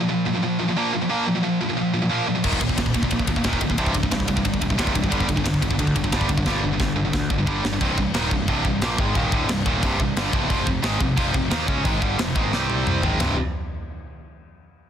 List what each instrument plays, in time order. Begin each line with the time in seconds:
0.00 distorted electric guitar A#2 F3
0.09 distorted electric guitar A#2 F3
0.25 distorted electric guitar A#2 F3
0.34 distorted electric guitar A#2 F3
0.42 distorted electric guitar A#2 F3
0.59 distorted electric guitar A#2 F3
0.68 distorted electric guitar A#2 F3
0.76 distorted electric guitar A#2 F3 A#3
0.93 distorted electric guitar A#2 F3
1.01 distorted electric guitar A#2 F3
1.09 distorted electric guitar A#2 F3 A#3
1.26 distorted electric guitar A#2 F3
1.35 distorted electric guitar A#2 F3
1.43 distorted electric guitar A#2 F3
1.61 distorted electric guitar A#2 F3
1.69 distorted electric guitar A#2 F3
1.77 distorted electric guitar A#2 F3
1.94 distorted electric guitar A#2 F3
2.02 distorted electric guitar A#2 F3
2.10 distorted electric guitar A#2 F3 A#3
2.27 distorted electric guitar A#2 F3
2.35 distorted electric guitar A#2 F3
2.44 picked electric bass D#1, distorted electric guitar D#2 A#2 D#3, kick, crash
2.53 kick
2.61 picked electric bass D#1, distorted electric guitar D#2 A#2, kick, ride
2.69 distorted electric guitar D#2 A#2, kick
2.77 picked electric bass D#1, distorted electric guitar D#2 A#2, kick, snare, ride
2.86 kick
2.94 picked electric bass D#1, distorted electric guitar D#2 A#2, kick, ride
3.03 distorted electric guitar D#2 A#2, kick
3.11 picked electric bass A#1, distorted electric guitar D#2 A#2, kick, ride
3.19 kick
3.27 picked electric bass D#1, distorted electric guitar D#2 A#2, kick, ride
3.36 distorted electric guitar D#2 A#2, kick
3.44 picked electric bass D#1, distorted electric guitar D#2 A#2 D#3, kick, snare, ride
3.53 kick
3.61 picked electric bass D1, distorted electric guitar D#2 A#2, kick, ride
3.70 distorted electric guitar D#2 A#2, kick
3.78 picked electric bass C1, distorted electric guitar C2 G2 C3, kick, ride
3.86 kick
3.94 picked electric bass C1, distorted electric guitar C2 G2, kick, ride
4.03 distorted electric guitar C2 G2, kick
4.11 picked electric bass C1, distorted electric guitar C2 G2, kick, snare, ride
4.20 kick
4.28 picked electric bass C1, distorted electric guitar C2 G2, kick, ride
4.37 distorted electric guitar C2 G2, kick
4.45 picked electric bass G1, distorted electric guitar C2 G2, kick, ride
4.54 kick
4.61 picked electric bass C1, distorted electric guitar C2 G2, kick, ride
4.70 distorted electric guitar C2 G2, kick
4.78 picked electric bass C1, distorted electric guitar C2 G2 C3, kick, snare, ride
4.87 kick
4.95 picked electric bass C1, distorted electric guitar C2 G2, kick, ride
5.03 distorted electric guitar C2 G2, kick
5.10 picked electric bass G1, distorted electric guitar G2 D3 G3, kick, ride
5.20 kick
5.28 picked electric bass G1, distorted electric guitar G2 D3, kick, ride
5.36 distorted electric guitar G2 D3, kick
5.44 picked electric bass G1, distorted electric guitar G2 D3, kick, snare, ride
5.54 kick
5.62 picked electric bass G1, distorted electric guitar G2 D3, kick, ride
5.70 distorted electric guitar G2 D3, kick
5.79 picked electric bass D2, distorted electric guitar G2 D3, kick, ride
5.87 kick
5.96 picked electric bass G1, distorted electric guitar G2 D3, kick, ride
6.04 distorted electric guitar G2 D3, kick
6.12 picked electric bass G1, distorted electric guitar G2 D3 G3, kick, snare, ride
6.21 kick
6.29 picked electric bass G1, distorted electric guitar G2 D3, kick, ride
6.38 distorted electric guitar G2 D3, kick
6.46 picked electric bass G1, distorted electric guitar G2 D3 G3, kick, snare
6.63 picked electric bass G1, distorted electric guitar G2 D3
6.72 distorted electric guitar G2 D3
6.80 picked electric bass G1, distorted electric guitar G2 D3, kick, snare
6.96 picked electric bass G1, distorted electric guitar G2 D3
7.05 distorted electric guitar G2 D3
7.13 picked electric bass D2, distorted electric guitar G2 D3, kick, snare
7.30 picked electric bass G1, distorted electric guitar G2 D3, kick
7.38 distorted electric guitar G2 D3
7.46 picked electric bass G1, distorted electric guitar G2 D3 G3, kick
7.63 picked electric bass G1, distorted electric guitar G2 D3, snare
7.73 distorted electric guitar G2 D3
7.81 picked electric bass C1, distorted electric guitar C2 G2 C3, kick, crash
7.98 picked electric bass C1, distorted electric guitar C2 G2, kick
8.13 picked electric bass D#1, distorted electric guitar D#2 A#2 D#3, snare, crash
8.31 picked electric bass C1, distorted electric guitar C2 G2, kick
8.48 picked electric bass C1, distorted electric guitar C2 G2 C3, kick, crash
8.65 picked electric bass C1, distorted electric guitar C2 G2, kick
8.81 picked electric bass A#1, distorted electric guitar A#2 F3 A#3, snare, crash
8.98 picked electric bass G#1, distorted electric guitar G#2 D#3 G#3, kick
9.15 picked electric bass D#1, distorted electric guitar D#2 A#2 D#3, kick, crash
9.32 picked electric bass D1, distorted electric guitar D2 A2 D3, kick
9.49 picked electric bass C1, distorted electric guitar C2 G2, snare, crash
9.66 picked electric bass D#1, distorted electric guitar D#2 A#2 D#3, kick
9.82 picked electric bass C1, distorted electric guitar C2 G2 C3, kick, crash
10.00 picked electric bass C1, distorted electric guitar C2 G2, kick
10.16 picked electric bass G1, distorted electric guitar G2 D3 G3, snare, crash
10.32 picked electric bass C1, distorted electric guitar C2 G2 C3, kick
10.50 picked electric bass F1, distorted electric guitar F2 C3 F3, kick, crash
10.66 picked electric bass F1, distorted electric guitar F2 C3, kick
10.82 picked electric bass G#1, distorted electric guitar G#2 D#3 G#3, snare, crash
11.00 picked electric bass F1, distorted electric guitar F2 C3, kick
11.17 picked electric bass F1, distorted electric guitar F2 C3 F3, kick, crash
11.33 picked electric bass F1, distorted electric guitar F2 C3, kick
11.51 picked electric bass D#2, distorted electric guitar D#3 A#3 D#4, snare, crash
11.67 picked electric bass C#2, distorted electric guitar C#3 G#3 C#4, kick
11.84 picked electric bass G#1, distorted electric guitar G#2 D#3 G#3, kick, crash
12.01 picked electric bass G1, distorted electric guitar G2 D3 G3, kick
12.18 picked electric bass F1, distorted electric guitar F2 C3, snare, crash
12.35 picked electric bass G#1, distorted electric guitar G#2 D#3 G#3, kick
12.52 picked electric bass C2, distorted electric guitar C3 G3 C4, snare
12.70 high tom
12.87 mid tom
13.02 picked electric bass G#1, distorted electric guitar G#2 D#3 G#3, floor tom
13.19 picked electric bass C1, distorted electric guitar C2 G2 C3, snare, floor tom, ride bell